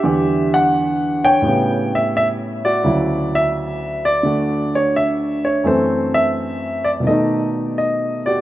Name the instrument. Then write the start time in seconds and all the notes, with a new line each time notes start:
grand piano
Already playing: E5
0.03 E2 D3 G3 G4
0.54 F#5
1.25 C#5 G5
1.42 A2 G3 B3
1.46 C#3
1.95 E5
2.17 E5
2.65 F#4 D5
2.84 D2 C#3 F#3 E4
3.35 E5
4.05 D5
4.23 D3 A3 F#4
4.75 C#5
4.96 E5
5.45 C#5
5.64 F#2 E3 A3 C4 A4 C5
6.14 E5
6.84 D5
7.00 B2 D#3
7.07 A3 D#4 A4 D#5
7.78 D#5
8.26 F#4 G4 D5